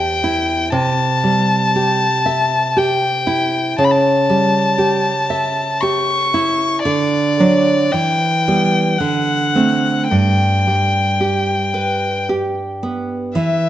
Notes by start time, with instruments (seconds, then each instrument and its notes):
Already playing: nylon-string guitar E2 G4, violin G5
0.24 nylon-string guitar E4
0.72 nylon-string guitar C3, violin A5
1.24 nylon-string guitar G3
1.76 nylon-string guitar G4
2.26 nylon-string guitar E5
2.77 nylon-string guitar G4, violin G5
3.27 nylon-string guitar E4
3.78 nylon-string guitar C#3, violin A5
3.84 violin B5
3.91 violin A5
4.30 nylon-string guitar G3
4.78 nylon-string guitar G4
5.30 nylon-string guitar E5
5.81 nylon-string guitar G4, violin C#6
6.34 nylon-string guitar E4
6.83 nylon-string guitar D3, violin D5
7.40 nylon-string guitar F#3 D4
7.92 nylon-string guitar E3, violin G5
8.48 nylon-string guitar G3 B3
8.98 nylon-string guitar D3, violin F#5
9.55 nylon-string guitar A3 C4
10.09 nylon-string guitar G2, violin G5
10.67 nylon-string guitar G3
11.21 nylon-string guitar G4
11.74 nylon-string guitar B4
12.29 nylon-string guitar G4
12.83 nylon-string guitar B3
13.35 nylon-string guitar E3, violin E5